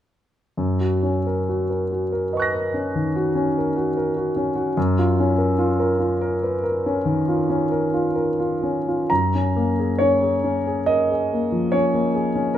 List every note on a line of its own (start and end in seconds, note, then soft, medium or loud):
0.57 4.73 F#2 soft
0.80 1.17 F#4 soft
1.03 1.39 C#4 soft
1.26 1.61 A#4 soft
1.49 1.83 F#4 soft
1.70 2.04 A#4 soft
1.92 2.25 F#4 soft
2.12 2.46 A#4 soft
2.33 2.54 B4 soft
2.33 4.73 D#5 soft
2.33 4.75 C#6 soft
2.40 4.76 F#6 soft
2.40 4.77 A#6 soft
2.54 2.87 A#4 soft
2.74 3.07 C#4 soft
2.95 3.28 D#3 soft
3.16 3.48 F#4 soft
3.35 3.68 C#4 soft
3.58 3.90 A#4 soft
3.76 4.08 F#4 soft
3.97 4.29 A#4 soft
4.17 4.48 F#4 soft
4.36 4.68 C#4 soft
4.55 4.76 F#4 soft
4.77 9.06 F#2 soft
4.99 5.30 F4 soft
5.20 5.51 C#4 soft
5.38 5.70 A#4 soft
5.59 5.91 F4 soft
5.79 6.12 A#4 soft
5.99 6.33 F4 soft
6.21 6.55 A#4 soft
6.43 6.64 B4 soft
6.63 6.97 A#4 soft
6.86 7.19 C#4 soft
7.05 7.40 D#3 soft
7.28 7.62 F4 soft
7.49 7.84 C#4 soft
7.71 8.06 A#4 soft
7.94 8.29 F4 soft
8.16 8.53 A#4 soft
8.40 8.78 F4 soft
8.63 9.01 C#4 soft
8.88 9.11 F4 soft
9.10 12.58 F#2 soft
9.10 10.00 A#5 medium
9.35 9.70 C#4 soft
9.56 9.91 A#3 soft
9.79 10.14 G#4 soft
9.99 10.36 C#4 soft
9.99 10.88 C#5 medium
10.22 10.58 G#4 soft
10.44 10.80 C#4 soft
10.67 11.02 G#4 soft
10.86 11.11 A#4 soft
10.86 11.74 D#5 medium
11.10 11.46 G#4 soft
11.33 11.67 A#3 soft
11.52 11.87 F3 soft
11.72 12.08 C#4 soft
11.72 12.57 C#5 medium
11.94 12.28 A#3 soft
12.15 12.49 G#4 soft
12.36 12.58 C#4 soft
12.54 12.58 A#4 soft